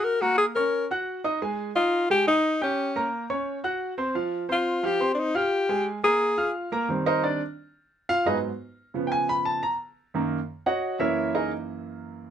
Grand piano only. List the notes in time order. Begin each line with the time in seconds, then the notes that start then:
Already playing: F#4 F#5 F#6
0.22 A#3 A#4 A#5
0.56 C#4 C#5 C#6
0.91 F#4 F#5 F#6
1.24 D#4 D#5 D#6
1.42 G#3 G#4 G#5
1.76 D#4 D#5 D#6
2.10 G#3 G#4 G#5
2.27 D#4 D#5 D#6
2.61 G4 G5 G6
2.96 A#3 A#4 A#5
3.30 C#4 C#5 C#6
3.64 F#4 F#5 F#6
3.98 C4 C5 C6
4.15 F3 F4 F5
4.49 C4 C5 C6
4.83 F3 F4 F5
5.00 C4 C5 C6
5.35 F4 F5 F6
5.69 G#3 G#4 G#5
6.04 A#3 A#4 A#5
6.37 F4 F5 F6
6.72 A#3 A#4 A#5
6.89 D#3 G3 C4
7.06 D#4 A#4 C5 D#5
7.24 D4 D5
8.09 F4 F5
8.25 G#2 F#3 B3 D#4 G#4 B4 D#5
8.94 C#3 F3 B3
9.07 G5
9.12 G#5
9.29 B5
9.45 A5
9.63 A#5
10.14 F#2 D#3 A#3
10.66 F#4 C#5 D#5 F#5
10.99 F#2 E3 A#3 E4 A#4 C#5 E5
11.35 D#4 G#4 A#4 D#5